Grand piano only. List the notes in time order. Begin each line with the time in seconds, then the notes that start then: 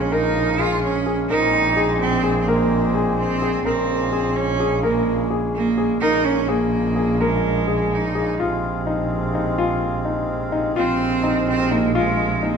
0.12 A#4
0.59 G#4
1.06 G#4
1.30 A#4
1.77 G#4
2.24 G#4
2.48 A#4
2.95 G#4
3.42 G#4
3.65 A#4
4.13 G#4
4.60 G#4
4.83 A#4
5.30 G#4
5.78 G#4
6.02 A#4
6.49 G#4
6.96 G#4
7.21 A#4
7.68 G#4
8.15 G#4
8.40 F4
8.87 D#4
9.35 D#4
9.58 F4
10.05 D#4
10.52 D#4
10.76 F4
11.23 D#4
11.71 D#4
11.95 F4
12.43 D#4